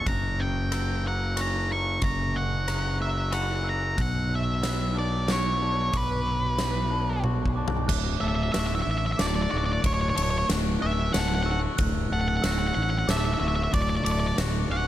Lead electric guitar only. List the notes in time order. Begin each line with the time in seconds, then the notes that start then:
0.08 A#5
0.40 G5
1.07 F#5
1.41 A#5
1.72 C#6
2.04 A#5
2.36 F#5
3.02 E5
3.33 F#5
3.69 A#5
4.01 F#5
4.35 E5
4.98 D5
5.32 C#5
5.97 B4
8.20 E5
8.28 E5
8.35 E5
8.43 E5
8.52 E5
8.60 E5
8.67 E5
8.75 E5
8.82 E5
8.91 E5
8.98 E5
9.06 E5
9.12 E5
9.20 D5
9.27 D5
9.35 D5
9.42 D5
9.51 D5
9.58 D5
9.66 D5
9.73 D5
9.86 C#5
9.94 C#5
10.01 C#5
10.09 C#5
10.16 C#5
10.23 C#5
10.30 C#5
10.38 C#5
10.82 E5
11.13 F#5
11.20 F#5
11.28 F#5
11.35 F#5
11.43 F#5
11.51 F#5
12.13 F#5
12.21 F#5
12.28 F#5
12.37 F#5
12.44 F#5
12.52 F#5
12.59 F#5
12.67 F#5
12.75 F#5
12.83 F#5
12.90 F#5
12.99 F#5
13.10 E5
13.17 E5
13.25 E5
13.34 E5
13.40 E5
13.48 E5
13.56 E5
13.64 E5
13.74 D5
13.82 D5
13.90 D5
13.97 D5
14.05 D5
14.12 D5
14.20 D5
14.27 D5
14.72 F#5